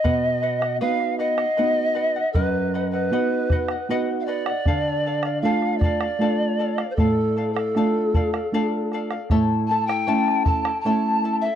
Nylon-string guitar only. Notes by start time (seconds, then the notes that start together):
0.04 B2
0.82 B3 D#4 F#4
1.59 B3 D#4 F#4
2.35 F#2
3.11 B3 D#4 F#4
3.89 B3 D#4 F#4
4.66 D3
5.43 A3 D4 F4
6.19 A3 D4 F4
6.97 A2
7.75 A3 D4 F4
8.52 A3 D4 F4
9.31 A2
10.07 A3 C#4 E4
10.85 A3 C#4 E4